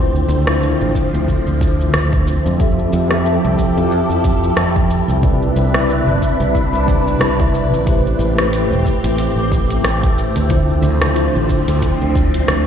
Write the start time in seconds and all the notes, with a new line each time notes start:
Already playing: D2 D3 F3 A3 C4 D4 E4 F4 C5
0.15 cabasa
0.28 D2, cabasa
0.45 D3 D4 E4, cross-stick, cabasa
0.49 F4 C5
0.62 cabasa
0.81 A1, cabasa
0.95 kick, cabasa
1.14 D2, cabasa
1.28 kick, cabasa
1.47 D2, cabasa
1.61 kick, cabasa
1.81 cabasa
1.94 D2, cross-stick, cabasa
2.13 kick, cabasa
2.27 cabasa
2.46 F2, cabasa
2.58 F3 C4 E4 G4 A4 E5, kick, cabasa
2.79 cabasa
2.93 F2, cabasa
3.08 F3 C4 G4, cross-stick, cabasa
3.12 A4 E5
3.26 cabasa
3.44 C2, cabasa
3.58 kick, cabasa
3.77 F2, cabasa
3.92 cabasa
4.10 F2, cabasa
4.24 kick, cabasa
4.43 cabasa
4.57 F2, cross-stick, cabasa
4.76 kick, cabasa
4.90 cabasa
5.08 C2, cabasa
5.21 C3 C4 D4 E4 B4 D5, kick, cabasa
5.42 cabasa
5.56 C2, cabasa
5.72 C3 C4 E4, cross-stick, cabasa
5.76 B4 D5
5.89 cabasa
6.07 G1, cabasa
6.22 kick, cabasa
6.40 C2, cabasa
6.55 kick, cabasa
6.73 C2, cabasa
6.86 C3 C4 E4 B4 D5, kick, cabasa
7.08 cabasa
7.20 C2, cross-stick, cabasa
7.38 C3 C4 E4 B4 E5, kick, cabasa
7.55 cabasa
7.72 A1, cabasa
7.85 A3 C4 E4 G4 B4 C5, kick, closed hi-hat, cabasa
8.06 cabasa
8.19 A1, cabasa
8.36 A3 E4 G4 B4, cross-stick, closed hi-hat, cabasa
8.41 C5
8.53 closed hi-hat, cabasa
8.71 E1, cabasa
8.86 kick, cabasa
9.04 A1, closed hi-hat, cabasa
9.18 closed hi-hat, cabasa
9.36 A1, cabasa
9.52 kick, cabasa
9.70 closed hi-hat, cabasa
9.83 A1, cross-stick, closed hi-hat, cabasa
10.03 kick, closed hi-hat, cabasa
10.18 cabasa
10.36 D2, closed hi-hat, cabasa
10.49 D3 F3 C4 D4 E4 F4 C5, kick, closed hi-hat, cabasa
10.70 cabasa
10.82 D2, cabasa
11.00 D3 D4 E4, cross-stick, closed hi-hat, cabasa
11.04 F4 C5
11.16 closed hi-hat, cabasa
11.35 A1, cabasa
11.49 kick, cabasa
11.68 D2, closed hi-hat, cabasa
11.82 kick, closed hi-hat, cabasa
12.01 D2, cabasa
12.15 kick, cabasa
12.34 closed hi-hat, cabasa
12.48 D2, cross-stick, closed hi-hat, cabasa